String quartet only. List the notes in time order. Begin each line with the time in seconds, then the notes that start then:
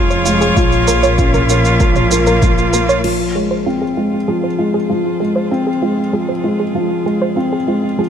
Already playing: F3 F4 G#4 C#5
0.57 A#2
0.78 A#3
3.04 F3
3.36 G#4 C5